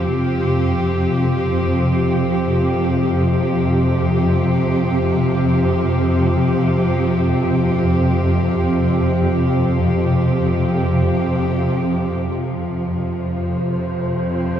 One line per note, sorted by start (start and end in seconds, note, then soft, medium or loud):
0.00 12.29 F2 medium
0.00 12.29 C3 medium
0.00 12.28 F3 medium
0.00 12.28 C4 medium
0.00 12.30 G4 medium
12.28 14.60 F2 medium
12.28 14.60 C3 medium
12.28 14.60 F3 medium
12.28 14.60 C5 medium
14.25 14.60 C4 medium